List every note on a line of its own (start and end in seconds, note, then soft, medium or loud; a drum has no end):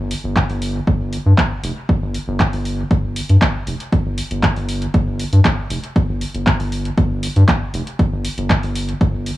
0.00 0.14 G1 medium
0.11 open hi-hat medium
0.24 0.39 G1 medium
0.36 kick loud
0.36 clap medium
0.50 0.80 G1 medium
0.50 open hi-hat soft
0.62 open hi-hat medium
0.87 1.18 G1 loud
0.87 kick loud
1.13 open hi-hat medium
1.26 1.33 G2 medium
1.38 kick loud
1.38 clap medium
1.64 1.72 F1 loud
1.64 open hi-hat medium
1.89 kick loud
2.02 2.17 G1 medium
2.14 open hi-hat medium
2.28 2.43 G1 medium
2.40 kick loud
2.40 clap medium
2.53 2.83 G1 medium
2.53 open hi-hat soft
2.65 open hi-hat medium
2.91 3.21 G1 loud
2.91 kick loud
2.91 closed hi-hat soft
3.16 open hi-hat medium
3.29 3.37 G2 medium
3.29 closed hi-hat soft
3.42 kick loud
3.42 clap medium
3.42 closed hi-hat soft
3.67 3.75 F1 loud
3.67 open hi-hat medium
3.80 closed hi-hat soft
3.92 kick loud
3.92 closed hi-hat soft
4.06 4.21 G1 medium
4.18 open hi-hat medium
4.31 4.46 G1 medium
4.31 closed hi-hat soft
4.43 kick loud
4.43 clap medium
4.43 closed hi-hat soft
4.56 4.87 G1 medium
4.56 open hi-hat soft
4.69 open hi-hat medium
4.82 closed hi-hat soft
4.94 5.25 G1 loud
4.94 kick loud
4.94 closed hi-hat soft
5.19 open hi-hat medium
5.33 5.40 G2 medium
5.33 closed hi-hat soft
5.45 kick loud
5.45 clap medium
5.45 closed hi-hat soft
5.70 5.78 F1 loud
5.70 open hi-hat medium
5.84 closed hi-hat soft
5.96 kick loud
5.96 closed hi-hat soft
6.09 6.24 G1 medium
6.21 open hi-hat medium
6.34 6.50 G1 medium
6.34 closed hi-hat soft
6.47 kick loud
6.47 clap medium
6.47 closed hi-hat soft
6.60 6.90 G1 loud
6.60 open hi-hat soft
6.72 open hi-hat medium
6.85 closed hi-hat soft
6.98 7.28 G1 loud
6.98 kick loud
6.98 closed hi-hat soft
7.23 open hi-hat medium
7.36 7.44 G2 medium
7.36 closed hi-hat soft
7.48 kick loud
7.48 clap medium
7.48 closed hi-hat soft
7.74 7.82 F1 loud
7.74 open hi-hat medium
7.87 closed hi-hat soft
7.99 kick loud
7.99 closed hi-hat soft
8.13 8.28 G1 medium
8.25 open hi-hat medium
8.38 8.53 G1 medium
8.38 closed hi-hat soft
8.50 kick loud
8.50 clap medium
8.50 closed hi-hat soft
8.63 8.93 G1 medium
8.63 open hi-hat soft
8.76 open hi-hat medium
8.89 closed hi-hat soft
9.01 9.31 G1 loud
9.01 kick loud
9.01 closed hi-hat soft
9.26 open hi-hat medium